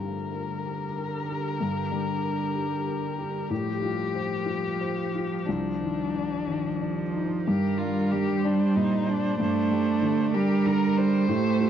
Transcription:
0.00 1.58 G2 soft
0.00 3.52 D3 soft
0.00 5.43 G3 soft
0.00 3.47 G4 soft
0.00 0.52 G4 soft
0.00 3.47 A#4 soft
0.00 3.52 A#4 soft
0.32 0.84 A#4 soft
0.66 1.17 G4 soft
0.97 1.48 A#4 soft
1.30 1.80 G4 soft
1.60 3.46 G2 soft
1.92 2.42 G3 soft
2.23 2.74 A#4 soft
2.55 3.06 G4 soft
2.87 3.37 A#4 soft
3.19 3.50 G4 soft
3.50 5.43 A2 soft
3.50 6.48 F3 medium
3.50 5.47 F4 soft
3.50 5.48 G4 medium
3.50 5.46 C5 soft
3.82 4.34 F4 soft
4.15 4.67 C5 soft
4.46 5.00 F4 soft
4.81 5.34 C5 soft
5.15 5.48 F4 soft
5.46 7.44 C2 soft
5.46 7.47 D#3 soft
5.46 7.43 G3 soft
5.46 7.27 D4 soft
5.46 7.46 D5 soft
5.82 6.35 D#3 soft
6.15 6.68 D5 soft
6.47 7.01 D#3 soft
6.47 7.49 F3 medium
6.81 7.34 D5 soft
7.15 7.48 D#4 soft
7.46 9.36 G2 medium
7.46 11.70 G3 soft
7.46 9.39 G3 medium
7.46 7.80 G4 soft
7.46 8.40 A#4 soft
7.46 11.26 D5 soft
7.46 11.25 A#5 soft
7.78 8.32 D4 soft
7.78 8.13 F4 soft
8.12 8.64 G3 soft
8.12 8.47 G4 medium
8.44 8.95 D4 soft
8.44 8.78 D4 soft
8.44 10.31 C5 medium
8.76 9.27 A#2 soft
8.76 9.11 D#4 medium
9.08 9.59 D4 soft
9.08 9.40 D4 medium
9.39 11.26 G2 medium
9.39 10.37 A3 medium
9.39 10.36 D4 medium
9.71 10.22 G3 soft
10.02 10.53 D3 medium
10.34 11.31 G3 loud
10.34 10.85 D4 soft
10.34 10.68 G4 medium
10.34 11.27 A#4 medium
10.66 11.17 D3 soft
10.66 10.99 A#4 medium
10.98 11.30 D4 soft
10.98 11.70 C5 medium
11.28 11.70 A2 medium
11.28 11.70 A3 loud
11.28 11.70 F4 soft
11.28 11.70 G4 medium
11.61 11.70 F4 soft

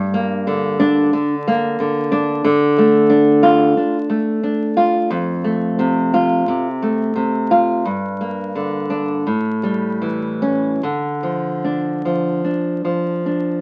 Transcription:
0.00 1.10 G2 medium
0.14 1.13 A#3 medium
0.47 1.12 D3 medium
0.80 1.34 D4 medium
1.13 1.79 D3 medium
1.48 2.44 A#3 medium
1.80 2.43 D3 medium
2.12 2.44 D4 medium
2.44 3.73 D3 medium
2.78 3.77 A3 medium
3.10 3.76 D4 medium
3.43 3.97 F4 medium
3.77 4.42 D4 medium
4.09 5.10 A3 medium
4.43 5.10 D4 medium
4.77 5.10 F4 medium
5.10 6.42 F2 medium
5.44 6.46 A3 soft
5.79 6.47 C3 soft
6.14 6.67 F4 medium
6.48 7.14 C3 medium
6.82 7.84 A3 medium
7.16 7.84 C3 soft
7.51 7.84 F4 medium
7.85 9.22 G2 medium
8.21 9.26 A#3 soft
8.55 9.26 D3 soft
8.90 9.25 D4 medium
9.27 10.77 A2 soft
9.63 10.80 G3 soft
10.02 10.80 E3 soft
10.42 10.81 C#4 medium
10.83 12.40 D3 medium
11.23 12.04 F3 soft
11.64 12.28 D4 soft
12.05 12.83 F3 soft
12.44 13.25 D4 soft
12.85 13.61 F3 soft
13.26 13.61 D4 soft

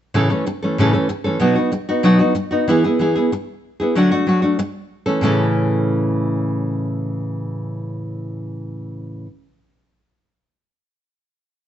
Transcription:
0.14 0.30 A2 medium
0.14 0.30 C#3 medium
0.14 0.30 E3 medium
0.14 0.30 A3 medium
0.14 0.29 C#4 medium
0.14 0.28 A4 medium
0.30 0.46 E3 soft
0.30 0.46 A3 medium
0.30 0.46 C#4 medium
0.30 0.45 A4 soft
0.46 muted nylon-string guitar stroke medium
0.63 0.79 E3 soft
0.63 0.78 A3 medium
0.63 0.78 C#4 medium
0.63 0.77 A4 medium
0.78 0.93 A2 medium
0.78 0.94 C#3 medium
0.78 0.94 E3 medium
0.78 0.93 A3 medium
0.78 0.93 C#4 medium
0.78 0.92 A4 loud
0.93 1.08 E3 medium
0.93 1.08 A3 soft
0.93 1.09 C#4 medium
0.93 1.09 A4 medium
1.09 muted nylon-string guitar stroke medium
1.24 1.40 E3 soft
1.24 1.40 A3 soft
1.24 1.41 C#4 medium
1.24 1.40 A4 medium
1.40 1.56 B2 medium
1.40 1.56 F#3 medium
1.40 1.56 B3 medium
1.40 1.56 D#4 medium
1.40 1.54 F#4 medium
1.55 1.71 B3 soft
1.55 1.72 D#4 soft
1.55 1.72 F#4 medium
1.72 muted nylon-string guitar stroke medium
1.89 2.03 B3 soft
1.89 2.04 D#4 soft
1.89 2.04 F#4 medium
2.03 2.19 B2 medium
2.03 2.19 F#3 medium
2.03 2.20 B3 medium
2.03 2.19 D#4 medium
2.03 2.18 F#4 medium
2.19 2.34 B3 soft
2.19 2.34 D#4 medium
2.19 2.35 F#4 medium
2.35 muted nylon-string guitar stroke medium
2.51 2.67 B3 soft
2.51 2.68 D#4 medium
2.51 2.67 F#4 medium
2.68 2.83 E3 medium
2.68 2.84 B3 medium
2.68 2.84 E4 medium
2.68 2.83 G#4 medium
2.84 3.00 B3 soft
2.84 3.00 E4 medium
2.84 3.00 G#4 medium
2.99 3.15 E3 medium
2.99 3.16 B3 medium
2.99 3.15 E4 medium
2.99 3.14 G#4 medium
3.15 3.31 B3 soft
3.15 3.32 E4 medium
3.15 3.31 G#4 medium
3.32 muted nylon-string guitar stroke medium
3.80 3.96 B3 soft
3.80 3.96 E4 medium
3.80 3.95 G#4 medium
3.95 4.11 D3 medium
3.95 4.11 F#3 medium
3.95 4.11 A3 medium
3.95 4.12 D4 medium
3.95 4.10 F#4 medium
4.11 4.26 A3 soft
4.11 4.27 D4 soft
4.11 4.27 F#4 medium
4.27 4.42 F#3 medium
4.27 4.43 A3 medium
4.27 4.42 D4 medium
4.27 4.41 F#4 medium
4.42 4.58 A3 soft
4.42 4.59 D4 soft
4.42 4.58 F#4 medium
4.59 muted nylon-string guitar stroke medium
5.06 5.22 E3 soft
5.06 5.22 A3 soft
5.06 5.22 C#4 medium
5.06 5.22 A4 medium
5.21 9.25 A2 medium
5.21 9.26 C#3 medium
5.21 9.26 E3 medium
5.21 9.27 A3 medium
5.21 9.27 C#4 medium
5.21 9.27 A4 medium

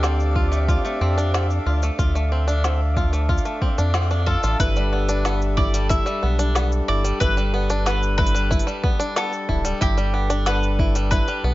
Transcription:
0.00 0.78 D2 loud
0.00 1.46 C4 medium
0.00 0.18 C4 medium
0.00 11.54 D4 medium
0.00 1.46 G4 medium
0.00 11.54 A4 medium
0.00 1.46 D5 medium
0.00 4.60 D5 medium
0.00 5.79 E5 medium
0.00 4.60 F5 medium
0.00 4.60 D6 medium
0.00 snare medium
0.00 shaker medium
0.20 shaker soft
0.36 0.50 F4 medium
0.36 kick medium
0.52 0.66 A3 medium
0.52 shaker medium
0.68 0.83 F4 medium
0.68 kick loud
0.68 shaker medium
0.85 0.99 A3 medium
0.85 shaker soft
1.00 1.59 F2 medium
1.00 1.16 C4 medium
1.18 1.32 D4 medium
1.18 shaker medium
1.34 1.49 C4 medium
1.34 snare medium
1.34 shaker medium
1.51 shaker soft
1.66 1.90 D2 medium
1.66 1.81 F4 medium
1.83 1.97 A3 medium
1.83 shaker medium
1.99 3.39 D2 loud
1.99 2.13 F4 medium
1.99 kick loud
1.99 shaker medium
2.15 2.30 A3 medium
2.15 shaker soft
2.32 2.46 C4 medium
2.47 2.62 D4 medium
2.47 shaker medium
2.64 2.79 C4 medium
2.64 snare medium
2.64 shaker medium
2.96 3.11 F4 medium
2.96 kick loud
2.96 shaker soft
3.13 3.27 A3 medium
3.13 shaker medium
3.29 3.44 F4 medium
3.29 kick loud
3.38 shaker soft
3.45 3.60 A3 medium
3.45 shaker soft
3.61 3.76 C4 medium
3.61 kick medium
3.78 4.36 F2 medium
3.78 3.93 D4 medium
3.78 shaker medium
3.94 4.10 C4 medium
3.94 snare loud
3.94 shaker soft
4.11 4.25 D4 medium
4.11 shaker soft
4.26 4.42 F4 medium
4.26 4.59 A4 medium
4.26 kick medium
4.43 4.55 A1 medium
4.43 4.58 F4 medium
4.43 shaker medium
4.59 5.99 G1 loud
4.59 11.54 G3 medium
4.59 4.74 E4 medium
4.59 5.53 B4 loud
4.59 kick loud
4.59 open hi-hat soft
4.59 shaker medium
4.76 4.91 G3 medium
4.76 shaker soft
4.93 5.07 B3 medium
5.09 5.23 D4 medium
5.09 open hi-hat medium
5.09 shaker medium
5.25 5.40 B3 medium
5.25 snare loud
5.25 open hi-hat soft
5.25 shaker medium
5.42 shaker soft
5.57 5.72 E4 medium
5.57 5.89 D5 loud
5.57 kick loud
5.74 5.89 G3 medium
5.74 open hi-hat medium
5.74 shaker medium
5.89 6.05 E4 medium
5.89 6.88 E5 loud
5.89 kick loud
5.89 open hi-hat soft
5.89 shaker medium
6.06 6.21 G3 medium
6.06 shaker soft
6.23 6.81 B1 medium
6.23 6.37 B3 medium
6.39 6.54 D4 medium
6.39 open hi-hat medium
6.39 shaker medium
6.55 6.71 B3 medium
6.55 snare loud
6.55 open hi-hat soft
6.55 shaker medium
6.72 shaker soft
6.88 7.12 G1 medium
6.88 7.03 E4 medium
6.88 7.20 D5 medium
7.04 7.19 G3 medium
7.04 open hi-hat medium
7.04 shaker medium
7.20 8.60 G1 medium
7.20 7.35 E4 medium
7.20 7.85 B4 loud
7.20 kick loud
7.20 open hi-hat soft
7.20 shaker medium
7.37 7.52 G3 medium
7.37 shaker soft
7.54 7.68 B3 medium
7.70 7.84 D4 medium
7.70 open hi-hat medium
7.70 shaker medium
7.86 8.01 B3 medium
7.86 8.16 B4 medium
7.86 snare loud
7.86 open hi-hat soft
7.86 shaker medium
8.03 shaker soft
8.18 8.33 E4 medium
8.18 9.19 B4 loud
8.18 kick loud
8.27 open hi-hat medium
8.35 8.49 G3 medium
8.35 shaker medium
8.51 8.65 E4 medium
8.51 kick loud
8.51 shaker medium
8.59 open hi-hat soft
8.67 8.82 G3 medium
8.67 shaker soft
8.84 8.98 B3 medium
8.84 kick loud
8.99 9.14 D4 medium
8.99 open hi-hat medium
9.16 9.32 B3 medium
9.16 9.81 A4 loud
9.16 snare loud
9.16 open hi-hat soft
9.16 shaker medium
9.33 shaker soft
9.49 9.73 D1 medium
9.49 9.63 E4 medium
9.49 kick medium
9.65 9.79 G3 medium
9.65 open hi-hat medium
9.65 shaker medium
9.81 11.21 G1 loud
9.81 9.96 E4 medium
9.81 10.43 G4 loud
9.81 kick loud
9.81 open hi-hat soft
9.81 shaker medium
9.97 10.12 G3 medium
9.97 shaker soft
10.14 10.28 B3 medium
10.30 10.45 D4 loud
10.30 open hi-hat medium
10.30 shaker medium
10.46 10.62 B3 medium
10.46 11.10 B4 medium
10.46 snare loud
10.46 open hi-hat soft
10.46 shaker medium
10.63 shaker soft
10.79 10.94 E4 medium
10.79 kick loud
10.95 11.10 G3 medium
10.95 open hi-hat medium
10.95 shaker medium
11.11 11.27 E4 medium
11.11 11.54 B4 loud
11.11 kick loud
11.11 open hi-hat soft
11.11 shaker medium
11.28 11.43 G3 medium
11.28 shaker soft
11.43 11.54 B1 medium
11.43 11.54 B3 medium

